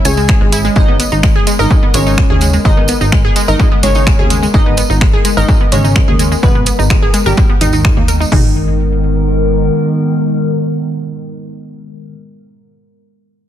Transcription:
Already playing: analog synth pad G#3 C#4 C#5
0.05 analog synth bass C#2, analog polysynth G#3 G#4, synth arpeggio sound C#5, synth pluck G#5, closed hi-hat, tambourine
0.17 synth arpeggio sound G#3, tambourine
0.28 synth arpeggio sound G#4, finger snap, kick, tambourine
0.41 analog synth bass G#1, synth arpeggio sound G#3
0.52 synth arpeggio sound E4, closed hi-hat, tambourine
0.65 synth arpeggio sound G#3, tambourine
0.76 analog synth bass G#1, analog polysynth D#3 D#4, synth arpeggio sound G#3, analog synth pad B3 A#4, synth pluck D#5, kick, tambourine
0.88 synth arpeggio sound B3
1.00 synth arpeggio sound B3, closed hi-hat, tambourine
1.12 analog synth bass G#1, synth arpeggio sound D#4, tambourine
1.23 synth arpeggio sound G#3, finger snap, kick, tambourine
1.36 synth arpeggio sound G#4
1.47 synth arpeggio sound G#3, closed hi-hat, tambourine
1.59 analog synth bass G#1, analog polysynth D#3 D#4, synth arpeggio sound A#4, synth pluck D#5, tambourine
1.71 synth arpeggio sound G#3, kick, tambourine
1.83 synth arpeggio sound B3
1.94 analog synth bass G#1, analog polysynth C#3 C#4, synth arpeggio sound G#3, synth pluck C#5, closed hi-hat, tambourine
2.06 synth arpeggio sound D#4, tambourine
2.18 synth arpeggio sound G#3, finger snap, kick
2.30 analog synth bass D#2, synth arpeggio sound G#4
2.41 synth arpeggio sound G#3, closed hi-hat, tambourine
2.53 synth arpeggio sound G#3, tambourine
2.65 analog synth bass G#1, analog polysynth D#3 D#4, synth arpeggio sound G#3, synth pluck D#5, kick, tambourine
2.77 synth arpeggio sound B3
2.88 synth arpeggio sound B3, closed hi-hat, tambourine
3.01 analog synth bass G#1, synth arpeggio sound D#4, tambourine
3.12 synth arpeggio sound G#3, finger snap, kick, tambourine
3.24 synth arpeggio sound G#4
3.36 synth arpeggio sound G#3, closed hi-hat, tambourine
3.48 analog synth bass G#1, analog polysynth D#3 D#4, synth arpeggio sound A#4, synth pluck D#5, tambourine
3.59 synth arpeggio sound G#3, finger snap, kick, tambourine
3.72 synth arpeggio sound B3
3.83 analog synth bass G#1, analog polysynth C#3 C#4, synth arpeggio sound G#3, synth pluck C#5, closed hi-hat, tambourine
3.95 synth arpeggio sound D#4, tambourine
4.07 synth arpeggio sound G#3, finger snap, kick, tambourine
4.19 analog synth bass D#2, synth arpeggio sound G#4
4.30 synth arpeggio sound G#3, closed hi-hat, tambourine
4.43 synth arpeggio sound G#3, tambourine
4.54 analog synth bass G#1, analog polysynth D#3 D#4, synth arpeggio sound G#3, synth pluck D#5, kick, tambourine
4.66 synth arpeggio sound B3
4.77 synth arpeggio sound B3, closed hi-hat, tambourine
4.90 analog synth bass G#1, synth arpeggio sound D#4, tambourine
5.01 synth arpeggio sound G#3, finger snap, kick, tambourine
5.13 synth arpeggio sound G#4
5.25 synth arpeggio sound G#3, closed hi-hat, tambourine
5.37 analog synth bass G#1, analog polysynth D#3 D#4, synth arpeggio sound A#4, synth pluck D#5, tambourine
5.48 synth arpeggio sound G#3, kick, tambourine
5.61 synth arpeggio sound B3
5.72 analog synth bass G#1, analog polysynth C#3 C#4, synth arpeggio sound G#3, synth pluck C#5, closed hi-hat, tambourine
5.84 synth arpeggio sound D#4, tambourine
5.96 synth arpeggio sound G#3, finger snap, kick, tambourine
6.08 analog synth bass D#2, synth arpeggio sound G#4
6.19 synth arpeggio sound G#3, closed hi-hat, tambourine
6.32 synth arpeggio sound G#3, tambourine
6.43 analog synth bass G#1, analog polysynth B2 B3, synth arpeggio sound G#3, synth pluck B4, kick, tambourine
6.55 synth arpeggio sound B3
6.66 synth arpeggio sound B3, closed hi-hat, tambourine
6.79 analog synth bass G#1, synth arpeggio sound D#4, tambourine
6.90 synth arpeggio sound G#3, finger snap, kick
7.02 synth arpeggio sound G#4
7.14 synth arpeggio sound G#3, closed hi-hat, tambourine
7.26 analog synth bass G#1, analog polysynth G2 G3, synth pluck G4, synth arpeggio sound A#4, tambourine
7.37 synth arpeggio sound G#3, finger snap, kick, tambourine
7.50 synth arpeggio sound B3
7.61 analog synth bass G#1, analog polysynth D#2 D#3, synth arpeggio sound D#4, synth pluck D#4, closed hi-hat, tambourine
7.73 synth arpeggio sound D#4, tambourine
7.85 synth arpeggio sound G#3, finger snap, kick
7.97 analog synth bass D#2, synth arpeggio sound A#3
8.08 synth arpeggio sound A#4, closed hi-hat, tambourine
8.20 synth arpeggio sound D#4, tambourine
8.32 analog synth bass G#1, analog polysynth D#3, synth arpeggio sound G#3, analog synth pad G#3 B3 A#4, synth pluck D#4, kick, floor tom, open hi-hat

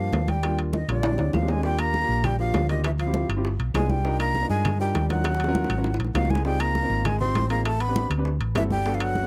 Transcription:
Already playing: tenor saxophone F3, grand piano G3 A#3 D4 G4, flute F5
0.13 fingered electric bass D#2, high bongo, low bongo, high conga, high timbale, low timbale
0.28 tenor saxophone G3, flute G5, high bongo, high conga, high timbale
0.43 grand piano G3 A#3 D4 F4, high bongo, high conga, high timbale, claves
0.58 high conga, high timbale
0.73 tenor saxophone D#3, flute D#5, high bongo, high conga, low timbale
0.88 fingered electric bass A#1, tenor saxophone D3, grand piano G3 A#3 D4 F4, flute D5, high bongo, high conga, high timbale, claves
1.03 high bongo, high conga, high timbale
1.11 grand piano G#3 C4 D4 G4
1.18 fingered electric bass D2, high bongo, high conga, high timbale
1.33 fingered electric bass D#2, tenor saxophone F3, flute F5, low bongo, high conga, low timbale, claves
1.41 grand piano G#3 C4 D4 G4
1.48 tenor saxophone G#3, flute G#5, low bongo, low timbale
1.56 grand piano G#3 C4 D4 G4
1.63 tenor saxophone G3, grand piano A#3 D4 F4 G4, flute G5, high bongo, high conga
1.79 tenor saxophone A#3, flute A#5, high conga, high timbale, claves
1.94 high bongo, high conga
2.02 grand piano A#3 D4 F4 G4
2.09 fingered electric bass A#1, high bongo, high conga
2.24 tenor saxophone G3, flute G5, high bongo, high conga, low conga, high timbale, claves
2.39 tenor saxophone F3, grand piano A#3 D4 F4 G4, flute F5, high bongo, high conga
2.54 fingered electric bass D2, high bongo, low bongo, high conga, high timbale, low timbale
2.69 tenor saxophone D#3, grand piano A#3 D4 F4 G4, flute D#5, high bongo, high timbale
2.84 tenor saxophone E3, flute E5, high bongo, high conga, high timbale, claves
2.99 tenor saxophone F3, flute F5, high bongo, high conga, high timbale
3.06 grand piano C4 E4 F4 G4
3.14 high bongo, high conga
3.29 fingered electric bass G1, high bongo, high timbale, claves
3.36 grand piano C4 E4 F4 G4
3.44 high bongo, high conga
3.59 fingered electric bass B1, high conga, high timbale
3.74 fingered electric bass C2, tenor saxophone G#3, grand piano B3 D4 F4 G#4, flute G#5, high bongo, low bongo, high conga, high timbale, low timbale, claves
3.89 tenor saxophone G3, flute G5, high bongo, high conga
4.04 grand piano D4 D#4 F4 A#4, high bongo, high conga
4.19 tenor saxophone A#3, flute A#5, high conga, high timbale, claves
4.35 high bongo, high conga
4.41 grand piano D4 D#4 F4 A#4
4.50 fingered electric bass G2, tenor saxophone G#3, flute G#5, high bongo, high conga
4.65 high bongo, high conga, low conga, high timbale, claves
4.79 tenor saxophone G3, grand piano D4 D#4 F4 A#4, flute G5, high bongo, high conga
4.94 fingered electric bass D#2, high bongo, low bongo, high conga, high timbale
5.09 tenor saxophone F#3, grand piano D4 D#4 F4 A#4, flute F#5, high bongo, high conga, high timbale
5.24 high bongo, high conga, high timbale, claves
5.35 high bongo
5.40 high conga, high timbale
5.44 grand piano C#4 F4, high bongo
5.48 grand piano F#4 A#4
5.55 high conga
5.64 low bongo
5.69 fingered electric bass G#1, high timbale, claves
5.77 grand piano C#4 F4 F#4 A#4
5.84 low bongo, high conga
5.94 low bongo
5.99 fingered electric bass A#1, high conga, high timbale
6.05 low bongo
6.14 fingered electric bass C#2, tenor saxophone F3, grand piano C4 D#4 F#4 A#4, flute F5, low bongo, high conga, high timbale, low timbale, claves
6.25 low bongo
6.30 tenor saxophone G#3, flute G#5, high conga
6.35 low bongo
6.45 tenor saxophone G3, grand piano C4 D#4 F4 G#4, flute G5, high bongo, high conga
6.60 tenor saxophone A#3, flute A#5, high conga, high timbale, claves
6.75 high bongo, high conga
6.82 grand piano C4 D#4 F4 A#4
6.90 fingered electric bass G#1, high bongo, high conga
7.05 tenor saxophone G#3, flute G#5, high bongo, high conga, low conga, high timbale, claves
7.20 grand piano C4 D#4 F4 G4, tenor saxophone C4, flute C6, high bongo, high conga, low conga
7.35 fingered electric bass A1, high bongo, low bongo, high conga, high timbale
7.50 tenor saxophone A#3, grand piano C4 D#4 F4 G#4, flute A#5, high bongo, high timbale
7.65 tenor saxophone A3, flute A5, high bongo, high conga, high timbale, claves
7.80 tenor saxophone B3, flute B5, high bongo, high conga, high timbale
7.87 grand piano C4 D4 G4 B4
7.96 high bongo, high conga
8.10 fingered electric bass D2, high bongo, high timbale, claves
8.17 grand piano C4 D4 G4 B4
8.25 high bongo, high conga
8.40 fingered electric bass A1, high conga, high timbale
8.55 fingered electric bass G1, tenor saxophone E3, grand piano C4 E4 F#4 A4, flute E5, high bongo, low bongo, high conga, high timbale, low timbale, claves
8.70 tenor saxophone G3, flute G5, high bongo, high conga
8.85 grand piano B3 D4 F#4 A4, high bongo, high conga
8.94 tenor saxophone F3, flute F5
9.00 tenor saxophone F#3, flute F#5, high conga, high timbale, claves
9.15 high bongo, high conga
9.22 grand piano B3 D4 F#4 A4

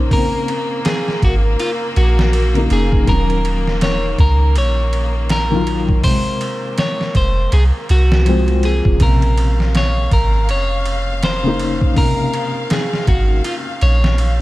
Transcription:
Already playing: felt piano C#3 A#3 D#4, string section A#3, clean electric guitar C5
0.08 felt piano C#3, kick, open hi-hat
0.12 felt piano A#3, clean electric guitar A#4
0.16 felt piano C4
0.48 ride
0.85 clean electric guitar G#4, snare, ride
1.08 snare
1.22 808-style bass G#1, clean electric guitar F#4, kick, ride
1.60 clean electric guitar F4, ride
1.96 808-style bass A#1, clean electric guitar F#4, ride
2.19 snare
2.33 ride
2.54 felt piano C#3 A#3, ride
2.58 felt piano D#4
2.70 808-style bass F1, clean electric guitar G#4, ride
2.92 kick
3.04 808-style bass D#1, felt piano D#3, kick, ride
3.08 felt piano F#3, clean electric guitar A#4
3.12 felt piano C#4
3.30 ride
3.45 ride
3.68 snare
3.81 clean electric guitar C#5, snare, ride
4.18 808-style bass C#2, clean electric guitar A#4, kick, ride
4.56 808-style bass A#1, clean electric guitar C#5, ride
4.93 ride
5.29 clean electric guitar A#4, snare, ride
5.51 felt piano D#3 F#3
5.55 felt piano F4
5.67 ride
5.89 kick
6.01 felt piano C3, clean electric guitar C5, kick, open hi-hat
6.05 felt piano G#3
6.41 ride
6.78 clean electric guitar C#5, snare, ride
7.01 snare
7.15 808-style bass F1, clean electric guitar C5, kick, ride
7.52 808-style bass C2, clean electric guitar G#4, ride
7.89 808-style bass C2, clean electric guitar F#4, ride
8.12 snare
8.25 felt piano F3 G#3, ride
8.29 felt piano C4
8.47 felt piano F3 G#3 C4, ride
8.63 clean electric guitar G#4, ride
8.85 808-style bass F1, kick
8.97 808-style bass A#1, felt piano C#3, string section F5, kick, ride
9.02 felt piano C3 A#3, clean electric guitar A#4
9.22 ride
9.38 ride
9.60 snare
9.75 clean electric guitar C#5, snare, ride
10.11 808-style bass G#1, clean electric guitar A#4, kick, ride
10.49 808-style bass F1, clean electric guitar C#5, ride
10.86 ride
11.23 clean electric guitar C5, snare, ride
11.43 felt piano C#3 A#3
11.48 felt piano D#4
11.60 ride
11.81 kick
11.93 felt piano C#3, kick, open hi-hat
11.97 felt piano A#3, clean electric guitar A#4
12.02 felt piano C3
12.34 ride
12.70 clean electric guitar G#4, snare, ride
12.94 snare
13.07 808-style bass G#1, clean electric guitar F#4, kick, ride
13.44 clean electric guitar F4, ride
13.81 808-style bass A#1, clean electric guitar C#5, ride
14.04 snare
14.18 ride

